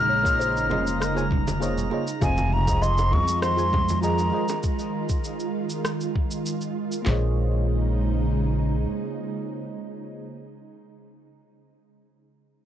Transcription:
Already playing: A#1 C#3 G#3 D#4 A#5 F6
0.09 C#5
0.23 A#3 F4 G#4 C#5 D#5 C6, kick, shaker
0.40 C5, high bongo, shaker
0.57 shaker
0.69 F1 A#3 C#4 F4 G#4 D#5 C6, high bongo, high conga, low conga
0.87 shaker
1.00 A#4, cross-stick, shaker
1.14 A#3 F4 G#4 C5 C#5 G#5, high bongo, shaker
1.31 kick, low conga
1.47 high bongo, high conga, shaker
1.60 A#3 F4 G#4 C5 C#5 D#5, shaker
1.78 low conga, shaker
1.90 A#3 F4 G#4 C5 C#5 D#5, high bongo
2.07 shaker
2.20 F1 D#3 F3 G#3 F4 G#4 C5 D#5 F5 G#5, kick, high bongo, shaker
2.37 high conga, shaker
2.53 A#5
2.67 F3 F4 G#4 C5 D#5, kick, high bongo, shaker
2.82 D#5 C6, shaker
2.98 high bongo, shaker
3.11 F2 F3 C4 F4 G#4 D#5 C#6, kick, high conga, low conga
3.28 shaker
3.42 C5 C6, cross-stick, high bongo, shaker
3.56 F3 F4 G#4 C5 G#5, shaker
3.73 kick, high bongo, low conga
3.89 high conga, shaker
4.01 F3 F4 G#4 C5 D#5 A#5, shaker
4.18 high bongo, shaker
4.31 F3 F4 G#4 C5 D#5
4.48 high bongo, shaker
4.63 kick, shaker
4.79 shaker
5.09 kick, shaker
5.24 shaker
5.40 shaker
5.70 shaker
5.85 cross-stick, shaker
6.01 shaker
6.15 kick
6.31 shaker
6.46 shaker
6.61 shaker
6.92 shaker
7.02 A#3 F4 G#4
7.06 A#1 C#3 G#3 D#4 G#4 C5 C#5, snare, clap
7.11 D#5

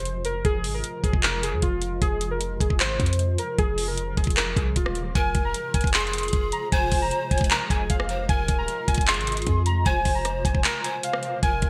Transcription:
Already playing: F1 C3 F3 G#3 F4 C5
0.05 closed hi-hat
0.25 A#4, closed hi-hat
0.45 F1 G#4, kick, closed hi-hat
0.64 G#1, open hi-hat
0.74 A#4
0.84 closed hi-hat
1.04 F1 G#4, kick, closed hi-hat
1.13 F1, kick
1.23 A#4, clap, closed hi-hat
1.43 G#4, closed hi-hat
1.53 F2
1.62 F1 F4, kick, closed hi-hat
1.82 closed hi-hat
2.02 F1 C3 F4 G#4, kick, closed hi-hat
2.21 closed hi-hat
2.31 A#4
2.41 closed hi-hat
2.60 F1 G#4, kick, closed hi-hat
2.70 kick
2.80 G#1 C5, clap, closed hi-hat
3.00 F2, kick, closed hi-hat
3.06 closed hi-hat
3.13 closed hi-hat
3.19 closed hi-hat
3.38 A#4, closed hi-hat
3.59 F1 G#4, kick, closed hi-hat
3.78 open hi-hat
3.88 A#4
3.98 closed hi-hat
4.17 F1 G#4, kick, closed hi-hat
4.24 kick, closed hi-hat
4.30 closed hi-hat
4.37 A#4, clap, closed hi-hat
4.56 C2 G#4, kick, closed hi-hat
4.76 D#1 F4, kick, closed hi-hat
4.86 cross-stick
4.95 closed hi-hat
5.15 F1 C3 F3 G#3 F4 A#4 G#5, kick, closed hi-hat
5.35 F1, kick, closed hi-hat
5.45 A#5
5.54 closed hi-hat
5.74 F1 G#5, kick, closed hi-hat
5.81 kick, closed hi-hat
5.87 closed hi-hat
5.94 G#4 C6, clap, closed hi-hat
6.00 closed hi-hat
6.07 closed hi-hat
6.13 closed hi-hat
6.18 closed hi-hat
6.23 closed hi-hat
6.28 closed hi-hat
6.33 F1, kick, closed hi-hat
6.52 A#5, closed hi-hat
6.72 F1 C5 G#5, kick, closed hi-hat
6.92 F1, kick, open hi-hat
7.02 A#5
7.11 closed hi-hat
7.31 F1 G#5, kick, closed hi-hat
7.38 kick, closed hi-hat
7.44 closed hi-hat
7.51 A#4 A#5, clap, closed hi-hat
7.70 F1 G#4 G#5, kick, closed hi-hat
7.90 F1 F5, kick, closed hi-hat
8.00 cross-stick
8.09 C5, closed hi-hat
8.29 F1 F3 F4 A#4 G#5, kick, closed hi-hat
8.48 D#1, kick, closed hi-hat
8.58 A#5
8.68 closed hi-hat
8.88 F1 G#5, kick, closed hi-hat
8.94 kick, closed hi-hat
9.01 closed hi-hat
9.08 G#4 C6, clap, closed hi-hat
9.14 G#1, closed hi-hat
9.21 closed hi-hat
9.27 closed hi-hat
9.32 closed hi-hat
9.37 closed hi-hat
9.42 closed hi-hat
9.47 F2, kick, closed hi-hat
9.66 A#5, closed hi-hat
9.86 F1 C5 G#5, kick, closed hi-hat
10.05 F1, kick, open hi-hat
10.15 A#5
10.25 cross-stick, closed hi-hat
10.45 F1 G#5, kick, closed hi-hat
10.55 kick
10.64 A#4 A#5, clap, closed hi-hat
10.84 C5 G#5, closed hi-hat
11.03 F5, closed hi-hat
11.13 cross-stick
11.23 closed hi-hat
11.43 F1 C3 G#3 F4 A#4 G#5, kick, closed hi-hat
11.62 F1, kick, closed hi-hat

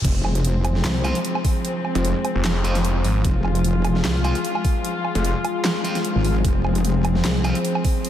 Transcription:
0.04 F1 F3 G#3 C4, kick, closed hi-hat, crash
0.25 low woodblock
0.35 closed hi-hat
0.45 closed hi-hat
0.65 closed hi-hat, low woodblock
0.75 snare
0.85 C2, snare, clap, closed hi-hat
1.04 F3 C4 F4, closed hi-hat, low woodblock
1.15 closed hi-hat
1.25 closed hi-hat
1.35 low woodblock
1.45 kick, open hi-hat
1.65 closed hi-hat
1.85 low woodblock
1.95 F1, closed hi-hat
2.05 closed hi-hat
2.25 closed hi-hat, low woodblock
2.35 F1
2.45 snare, clap, closed hi-hat
2.64 F1 F3 C4 F4, closed hi-hat
2.75 snare, closed hi-hat
2.85 closed hi-hat
3.05 G#1, open hi-hat
3.25 F1 F4, kick, closed hi-hat
3.45 low woodblock
3.55 closed hi-hat
3.65 closed hi-hat
3.85 closed hi-hat, low woodblock
3.95 snare
4.04 C2, snare, clap, closed hi-hat
4.24 F3 C4 F4, closed hi-hat, low woodblock
4.35 closed hi-hat
4.45 closed hi-hat
4.55 low woodblock
4.65 kick, open hi-hat
4.85 closed hi-hat
5.05 low woodblock
5.15 F1, closed hi-hat
5.25 closed hi-hat
5.45 closed hi-hat, low woodblock
5.65 snare, clap, closed hi-hat
5.84 F3 C4 F4, closed hi-hat
5.95 snare, closed hi-hat
6.05 closed hi-hat
6.15 G#1
6.25 open hi-hat
6.44 F1 C4, kick, closed hi-hat
6.65 low woodblock
6.75 closed hi-hat
6.85 closed hi-hat
7.05 closed hi-hat, low woodblock
7.15 snare
7.25 C2, snare, clap, closed hi-hat
7.44 F3 C4 F4, closed hi-hat, low woodblock
7.55 closed hi-hat
7.65 closed hi-hat
7.75 low woodblock
7.85 kick, open hi-hat
8.05 closed hi-hat

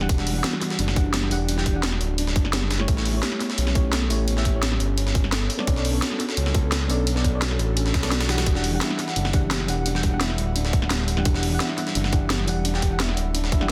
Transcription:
Already playing: G3 D4 F#4 G4
0.00 E3 D4 G4 F#5, snare
0.09 E1 D4, kick, closed hi-hat
0.17 E3 D4 G4 F#5, snare
0.27 closed hi-hat, open hi-hat
0.33 E3 G3 D4
0.38 F#5
0.44 F#4, snare, closed hi-hat
0.53 snare
0.61 snare, closed hi-hat
0.70 snare
0.79 F#1 D4, closed hi-hat
0.88 snare
0.95 E3 D4 G4 F#5, kick, closed hi-hat
1.14 G4, snare, closed hi-hat
1.23 snare
1.30 E1 E3 D4 G4 F#5, closed hi-hat, open hi-hat
1.49 D4, closed hi-hat
1.56 E3 D4 G4 G5, snare
1.66 kick, closed hi-hat
1.74 E3 D4 G4 F#5
1.83 F#4, snare, closed hi-hat
1.92 snare
2.01 D1, closed hi-hat
2.18 D4, closed hi-hat
2.27 snare
2.36 F#1, kick, closed hi-hat
2.45 snare
2.53 G4, snare, closed hi-hat
2.62 snare
2.71 snare, closed hi-hat, open hi-hat
2.78 A3 E4 G4 C#5, snare
2.88 A1 B3 C#4, kick, closed hi-hat
2.96 A3 E4 G4 C#5, snare
3.05 closed hi-hat, open hi-hat
3.12 A3 E4 G4
3.17 C#5
3.23 G4, snare, closed hi-hat
3.32 snare
3.40 snare, closed hi-hat
3.50 snare
3.58 B1 C#4, closed hi-hat
3.67 snare
3.74 A3 E4 G4 C#5, kick, closed hi-hat
3.93 A4, snare, closed hi-hat
4.02 snare
4.09 A1 A3 E4 G4 C#5, closed hi-hat, open hi-hat
4.28 C#4, closed hi-hat
4.36 A3 E4 G4 E5, snare
4.45 kick, closed hi-hat
4.53 A3 E4 G4 C#5
4.63 G4, snare, closed hi-hat
4.72 snare
4.80 G1, closed hi-hat
4.98 C#4, closed hi-hat
5.07 snare
5.15 kick, closed hi-hat
5.24 snare
5.32 A4, snare, closed hi-hat
5.50 D4 A4, closed hi-hat, open hi-hat
5.57 B3 A4 C#5 D5, snare
5.67 B1 C#4, kick, closed hi-hat
5.75 B3 A4 C#5 D5, snare
5.85 closed hi-hat, open hi-hat
5.91 B3 A4 C#5
6.02 F#4, snare, closed hi-hat
6.11 snare
6.20 snare, closed hi-hat
6.29 snare
6.37 C#2 C#4, closed hi-hat
6.46 snare
6.53 B3 A4 C#5, kick, closed hi-hat
6.72 A4, snare, closed hi-hat
6.81 snare
6.88 B1 B3 A4 C#5 D5, closed hi-hat, open hi-hat
7.07 C#4, closed hi-hat
7.14 B3 A4 C#5 D5, snare
7.24 kick, closed hi-hat
7.32 B3 A4 C#5 D5
7.42 F#4, snare, closed hi-hat
7.51 snare
7.59 A1, closed hi-hat
7.77 C#4, closed hi-hat
7.86 snare
7.94 B1 C#4, kick, snare, closed hi-hat
8.02 B3 A4 C#5 D5, snare, closed hi-hat
8.11 F#4, snare, closed hi-hat
8.21 snare, closed hi-hat
8.28 E3 D4 F#4 G4 F#5, snare, closed hi-hat, open hi-hat
8.38 snare, closed hi-hat
8.46 E1 G3 D4 F#5, kick, closed hi-hat
8.54 E3 D4 G4 F#5, snare
8.64 closed hi-hat, open hi-hat
8.70 E3 D4 G4
8.76 F#5
8.81 E4, snare, closed hi-hat
8.90 snare
8.99 snare, closed hi-hat
9.08 snare
9.16 F#1 D4, closed hi-hat
9.25 snare
9.32 E3 D4 G4 F#5, kick, closed hi-hat
9.51 G4, snare, closed hi-hat
9.60 snare
9.67 E1 E3 D4 G4 F#5, closed hi-hat, open hi-hat
9.86 D4, closed hi-hat
9.93 E3 D4 G4 G5, snare
10.03 kick, closed hi-hat
10.11 E3 D4 G4 F#5
10.21 E4, snare, closed hi-hat
10.30 snare
10.38 D1, closed hi-hat
10.56 D4, closed hi-hat
10.65 snare
10.73 kick, closed hi-hat
10.82 snare
10.90 G4, snare, closed hi-hat
11.08 closed hi-hat, open hi-hat
11.16 E3 D4 G4 F#5, snare
11.25 E1 D4, kick, closed hi-hat
11.33 E3 D4 G4 F#5, snare
11.43 closed hi-hat, open hi-hat
11.49 E3 D4 G4
11.54 F#5
11.60 E4, snare, closed hi-hat
11.69 snare
11.78 snare, closed hi-hat
11.87 snare
11.95 F#1 D4, closed hi-hat
12.04 snare
12.11 E3 D4 G4 F#5, kick, closed hi-hat
12.30 G4, snare, closed hi-hat
12.39 snare
12.46 E1 E3 D4 G4 F#5, closed hi-hat, open hi-hat
12.65 D4, closed hi-hat
12.73 E3 D4 G4 G5, snare
12.82 kick, closed hi-hat
12.90 E3 D4 G4 F#5
13.00 E4, snare, closed hi-hat
13.09 snare
13.17 D1, closed hi-hat
13.35 D4, closed hi-hat
13.44 snare
13.52 F#1 E4, kick, closed hi-hat
13.60 E3 D4 G4 F#5, snare

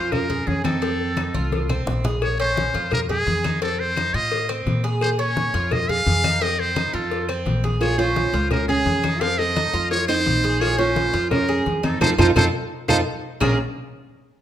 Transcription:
Already playing: F2 F4 C5
0.12 C#4 A#4, cowbell, high conga, low conga, claves
0.30 G#4, high conga, low conga
0.47 F2 C#4 G#4, cowbell, high conga
0.64 C4 D#4 A4, cowbell, high conga, claves
0.82 C4, cowbell, high conga
0.99 high conga
1.17 D#4, cowbell, high conga, claves
1.34 C2 F4, high conga
1.52 cowbell, high conga
1.69 C4, low conga, claves
1.86 A#1, cowbell, low conga
2.04 G#4, cowbell, low conga
2.22 C#5, cowbell, high conga, claves
2.40 C#4 C5, high conga
2.57 cowbell, high conga
2.74 F2 F4, cowbell, high conga
2.92 A#4, cowbell, high conga, low conga, claves
3.09 G#4, high conga, low conga
3.27 F2, cowbell, high conga
3.44 D#4, cowbell, high conga, claves
3.62 C4 A4, cowbell, high conga
3.80 C5, high conga
3.97 D#4, cowbell, high conga, claves
4.14 A2 F4 D#5, high conga
4.32 cowbell, high conga
4.49 C4, high conga, claves
4.66 A#2, cowbell, high conga
4.84 G#4, cowbell
5.01 C5, cowbell, high conga, claves
5.19 C#4 C#5, high conga
5.36 cowbell, high conga
5.54 F2 F4, cowbell, high conga
5.71 D#5, cowbell, high conga, low conga, claves
5.89 G#4 F5, high conga, low conga
6.06 F2, cowbell, high conga
6.24 D#4, cowbell, high conga, claves
6.41 C4 D#5, cowbell, high conga
6.59 C5, high conga
6.76 D#4, cowbell, high conga, claves
6.93 F2 F4 A4, high conga
7.11 cowbell, high conga
7.29 C4, high conga, claves
7.46 A#1, cowbell, high conga
7.64 G#4, cowbell, high conga
7.81 F4 C#5, cowbell, claves
7.98 C#4 F4 C5, high conga
8.16 cowbell, high conga
8.33 C#2 F4, cowbell, high conga
8.51 C#4 A#4, cowbell, high conga, low conga, claves
8.68 C#4 G#4, high conga, low conga
8.86 F2, cowbell, high conga
9.03 D#4, cowbell, high conga, claves
9.21 C4 A4 F5, cowbell, high conga
9.39 A4 D#5, high conga
9.56 D#4, cowbell, high conga, claves
9.73 F2 F4, high conga
9.91 F4 C#5, cowbell, high conga
10.08 C4 D#4 C5, high conga, claves
10.26 A#1, cowbell, high conga
10.44 G#4, cowbell
10.61 F4 C#5, cowbell, high conga, claves
10.78 C#4 F4 C5, high conga
10.96 cowbell, high conga
11.13 F2 F4, cowbell, high conga
11.31 C#4 A#4, cowbell, high conga, low conga, claves
11.48 G#4, high conga
11.66 F2, cowbell, high conga
11.83 C4 D#4 A4, cowbell, high conga, claves
12.01 F2 C4 D#4 F4 A4 C5, cowbell, low conga, claves
12.18 F2 C4 D#4 F4 A4 C5, cowbell, low conga, claves
12.36 F2 C4 D#4 F4 A4 C5, cowbell, low conga, claves
12.88 F2 C4 D#4 F4 A4 C5, cowbell, low conga, claves
13.40 A#1 A#3 C#4 F4 G#4 A#4, low bongo, low conga, claves

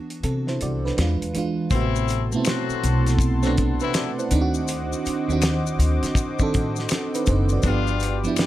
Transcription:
Already playing: E3 B3 D4 F#4
0.10 closed hi-hat
0.23 C3 C4 A4, closed hi-hat
0.47 E4 C5, snare
0.61 C2 F#4 D5, closed hi-hat
0.85 D4 B4, snare
0.97 E2 E3 G#3 D4, snare, closed hi-hat
1.02 F4
1.21 E2, closed hi-hat
1.34 E3 G#3 D4, closed hi-hat
1.38 F4
1.70 A1 C3 E3 A3 B3 C4 E4 A4 F#5 A5 C6, kick, closed hi-hat, maracas
1.75 F#4
1.96 maracas
2.08 closed hi-hat, maracas
2.31 B2 A3 B3, maracas
2.36 C4 E4
2.45 F#3 C4 F#4, finger snap, snare, closed hi-hat, maracas
2.69 muted upright bass stroke, maracas
2.83 B1, closed hi-hat, maracas
3.06 snare, closed hi-hat, maracas
3.19 kick, closed hi-hat, maracas
3.43 F#3 A3 B3 C4 F#4, snare, maracas
3.47 D4
3.57 kick, closed hi-hat
3.80 E3 C4 D4 E4 B4, maracas
3.94 F#4 D5, finger snap, snare, closed hi-hat, maracas
4.19 E4 C5, maracas
4.31 D2 D#3 C4 D4 C5 D#5 D6, closed hi-hat, maracas
4.35 D#4
4.41 F#4
4.54 maracas
4.68 closed hi-hat, maracas
4.93 maracas
5.06 muted upright bass stroke, closed hi-hat, maracas
5.28 D#2 D#3 C4 D4, maracas
5.33 F#4
5.42 finger snap, snare, closed hi-hat, maracas
5.67 maracas
5.79 D2, closed hi-hat, maracas
6.03 D3, snare, closed hi-hat, maracas
6.15 kick, closed hi-hat, maracas
6.39 D#3 C4 D4, kick, maracas
6.43 A4
6.54 A2, kick, closed hi-hat
6.76 snare, maracas
6.89 finger snap, snare, closed hi-hat, maracas
7.15 D#4 B4, closed hi-hat, maracas
7.26 F#1 D#4 C5, kick, closed hi-hat, maracas
7.49 F#4 D5, maracas
7.62 G1 F3 B3 D4 F4 B4 D5 G5 D6, kick, closed hi-hat, maracas
7.67 D4 G4
7.87 maracas
8.00 closed hi-hat, maracas
8.24 F3 B3 D4, maracas
8.28 E4
8.37 B3 D4 G4, finger snap, snare, closed hi-hat, maracas

